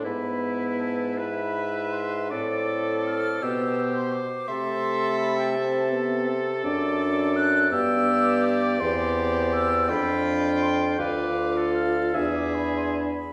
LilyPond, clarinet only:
\new Staff \with { instrumentName = "Clarinet" } { \time 6/8 \key a \minor \tempo 4. = 55 b'4. e''4. | d''4. c''4. | e''2~ e''8 r8 | d''2.~ |
d''4. g''4. | f''4. e''4 r8 | }